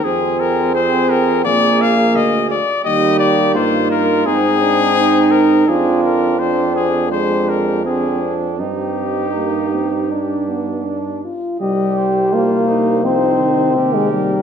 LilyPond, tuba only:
\new Staff \with { instrumentName = "Tuba" } { \clef bass \time 4/4 \key c \minor \tempo 4 = 84 f,2 bes,,4 d,8 r8 | ees,4 g,4 aes,2 | f,1 | g,2.~ g,8 r8 |
c,2. ees,4 | }